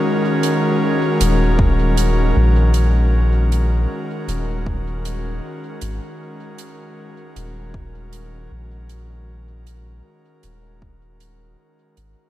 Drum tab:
HH |-x-x-x-x|-x-x-x-x|-x-x-x-x|-x-x-x-x|
BD |----o---|----o---|----o---|----o---|